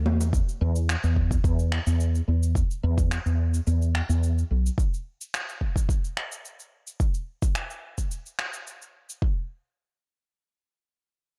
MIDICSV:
0, 0, Header, 1, 3, 480
1, 0, Start_track
1, 0, Tempo, 555556
1, 287, Time_signature, 4, 2, 24, 8
1, 9837, End_track
2, 0, Start_track
2, 0, Title_t, "Fretless electric bass"
2, 0, Program_c, 0, 35
2, 50, Note_on_c, 0, 40, 66
2, 338, Note_off_c, 0, 40, 0
2, 528, Note_on_c, 0, 40, 87
2, 817, Note_off_c, 0, 40, 0
2, 894, Note_on_c, 0, 40, 72
2, 1178, Note_off_c, 0, 40, 0
2, 1244, Note_on_c, 0, 40, 86
2, 1535, Note_off_c, 0, 40, 0
2, 1610, Note_on_c, 0, 40, 85
2, 1897, Note_off_c, 0, 40, 0
2, 1967, Note_on_c, 0, 40, 67
2, 2257, Note_off_c, 0, 40, 0
2, 2448, Note_on_c, 0, 40, 91
2, 2737, Note_off_c, 0, 40, 0
2, 2812, Note_on_c, 0, 40, 78
2, 3098, Note_off_c, 0, 40, 0
2, 3169, Note_on_c, 0, 40, 82
2, 3458, Note_off_c, 0, 40, 0
2, 3534, Note_on_c, 0, 40, 81
2, 3818, Note_off_c, 0, 40, 0
2, 3893, Note_on_c, 0, 35, 65
2, 4044, Note_off_c, 0, 35, 0
2, 9837, End_track
3, 0, Start_track
3, 0, Title_t, "Drums"
3, 50, Note_on_c, 9, 63, 88
3, 137, Note_off_c, 9, 63, 0
3, 178, Note_on_c, 9, 62, 43
3, 179, Note_on_c, 9, 69, 65
3, 265, Note_off_c, 9, 62, 0
3, 266, Note_off_c, 9, 69, 0
3, 285, Note_on_c, 9, 36, 110
3, 293, Note_on_c, 9, 69, 50
3, 372, Note_off_c, 9, 36, 0
3, 379, Note_off_c, 9, 69, 0
3, 421, Note_on_c, 9, 69, 30
3, 507, Note_off_c, 9, 69, 0
3, 654, Note_on_c, 9, 69, 62
3, 740, Note_off_c, 9, 69, 0
3, 771, Note_on_c, 9, 26, 68
3, 773, Note_on_c, 9, 69, 49
3, 858, Note_off_c, 9, 26, 0
3, 860, Note_off_c, 9, 69, 0
3, 894, Note_on_c, 9, 69, 29
3, 981, Note_off_c, 9, 69, 0
3, 1006, Note_on_c, 9, 36, 58
3, 1092, Note_off_c, 9, 36, 0
3, 1131, Note_on_c, 9, 36, 95
3, 1138, Note_on_c, 9, 69, 63
3, 1217, Note_off_c, 9, 36, 0
3, 1224, Note_off_c, 9, 69, 0
3, 1245, Note_on_c, 9, 36, 93
3, 1251, Note_on_c, 9, 69, 49
3, 1331, Note_off_c, 9, 36, 0
3, 1337, Note_off_c, 9, 69, 0
3, 1374, Note_on_c, 9, 69, 29
3, 1461, Note_off_c, 9, 69, 0
3, 1487, Note_on_c, 9, 26, 72
3, 1573, Note_off_c, 9, 26, 0
3, 1614, Note_on_c, 9, 69, 58
3, 1700, Note_off_c, 9, 69, 0
3, 1731, Note_on_c, 9, 69, 45
3, 1818, Note_off_c, 9, 69, 0
3, 1858, Note_on_c, 9, 69, 31
3, 1944, Note_off_c, 9, 69, 0
3, 2099, Note_on_c, 9, 69, 60
3, 2185, Note_off_c, 9, 69, 0
3, 2206, Note_on_c, 9, 36, 101
3, 2213, Note_on_c, 9, 69, 49
3, 2292, Note_off_c, 9, 36, 0
3, 2299, Note_off_c, 9, 69, 0
3, 2339, Note_on_c, 9, 69, 29
3, 2426, Note_off_c, 9, 69, 0
3, 2572, Note_on_c, 9, 36, 102
3, 2576, Note_on_c, 9, 69, 57
3, 2659, Note_off_c, 9, 36, 0
3, 2663, Note_off_c, 9, 69, 0
3, 2690, Note_on_c, 9, 26, 68
3, 2692, Note_on_c, 9, 69, 50
3, 2776, Note_off_c, 9, 26, 0
3, 2778, Note_off_c, 9, 69, 0
3, 2818, Note_on_c, 9, 69, 28
3, 2905, Note_off_c, 9, 69, 0
3, 3058, Note_on_c, 9, 69, 63
3, 3145, Note_off_c, 9, 69, 0
3, 3171, Note_on_c, 9, 69, 49
3, 3257, Note_off_c, 9, 69, 0
3, 3299, Note_on_c, 9, 69, 29
3, 3386, Note_off_c, 9, 69, 0
3, 3412, Note_on_c, 9, 26, 65
3, 3498, Note_off_c, 9, 26, 0
3, 3541, Note_on_c, 9, 69, 56
3, 3627, Note_off_c, 9, 69, 0
3, 3658, Note_on_c, 9, 69, 45
3, 3744, Note_off_c, 9, 69, 0
3, 3787, Note_on_c, 9, 69, 28
3, 3873, Note_off_c, 9, 69, 0
3, 4028, Note_on_c, 9, 69, 57
3, 4115, Note_off_c, 9, 69, 0
3, 4128, Note_on_c, 9, 36, 100
3, 4141, Note_on_c, 9, 69, 48
3, 4215, Note_off_c, 9, 36, 0
3, 4227, Note_off_c, 9, 69, 0
3, 4266, Note_on_c, 9, 69, 25
3, 4352, Note_off_c, 9, 69, 0
3, 4503, Note_on_c, 9, 69, 53
3, 4590, Note_off_c, 9, 69, 0
3, 4614, Note_on_c, 9, 26, 70
3, 4616, Note_on_c, 9, 69, 46
3, 4701, Note_off_c, 9, 26, 0
3, 4703, Note_off_c, 9, 69, 0
3, 4745, Note_on_c, 9, 69, 28
3, 4831, Note_off_c, 9, 69, 0
3, 4848, Note_on_c, 9, 36, 50
3, 4935, Note_off_c, 9, 36, 0
3, 4975, Note_on_c, 9, 36, 85
3, 4985, Note_on_c, 9, 69, 59
3, 5061, Note_off_c, 9, 36, 0
3, 5072, Note_off_c, 9, 69, 0
3, 5088, Note_on_c, 9, 36, 90
3, 5097, Note_on_c, 9, 69, 47
3, 5174, Note_off_c, 9, 36, 0
3, 5183, Note_off_c, 9, 69, 0
3, 5223, Note_on_c, 9, 69, 27
3, 5309, Note_off_c, 9, 69, 0
3, 5332, Note_on_c, 9, 26, 68
3, 5418, Note_off_c, 9, 26, 0
3, 5459, Note_on_c, 9, 69, 54
3, 5545, Note_off_c, 9, 69, 0
3, 5573, Note_on_c, 9, 69, 41
3, 5660, Note_off_c, 9, 69, 0
3, 5698, Note_on_c, 9, 69, 29
3, 5785, Note_off_c, 9, 69, 0
3, 5937, Note_on_c, 9, 69, 56
3, 6023, Note_off_c, 9, 69, 0
3, 6048, Note_on_c, 9, 36, 102
3, 6050, Note_on_c, 9, 69, 48
3, 6134, Note_off_c, 9, 36, 0
3, 6136, Note_off_c, 9, 69, 0
3, 6171, Note_on_c, 9, 69, 28
3, 6258, Note_off_c, 9, 69, 0
3, 6414, Note_on_c, 9, 36, 91
3, 6415, Note_on_c, 9, 69, 57
3, 6501, Note_off_c, 9, 36, 0
3, 6501, Note_off_c, 9, 69, 0
3, 6525, Note_on_c, 9, 26, 73
3, 6527, Note_on_c, 9, 69, 48
3, 6611, Note_off_c, 9, 26, 0
3, 6613, Note_off_c, 9, 69, 0
3, 6654, Note_on_c, 9, 69, 29
3, 6741, Note_off_c, 9, 69, 0
3, 6894, Note_on_c, 9, 69, 57
3, 6895, Note_on_c, 9, 36, 48
3, 6980, Note_off_c, 9, 69, 0
3, 6981, Note_off_c, 9, 36, 0
3, 7009, Note_on_c, 9, 69, 47
3, 7096, Note_off_c, 9, 69, 0
3, 7137, Note_on_c, 9, 69, 27
3, 7223, Note_off_c, 9, 69, 0
3, 7246, Note_on_c, 9, 26, 70
3, 7333, Note_off_c, 9, 26, 0
3, 7373, Note_on_c, 9, 69, 54
3, 7460, Note_off_c, 9, 69, 0
3, 7492, Note_on_c, 9, 69, 46
3, 7578, Note_off_c, 9, 69, 0
3, 7619, Note_on_c, 9, 69, 29
3, 7705, Note_off_c, 9, 69, 0
3, 7858, Note_on_c, 9, 69, 56
3, 7944, Note_off_c, 9, 69, 0
3, 7967, Note_on_c, 9, 36, 100
3, 8053, Note_off_c, 9, 36, 0
3, 9837, End_track
0, 0, End_of_file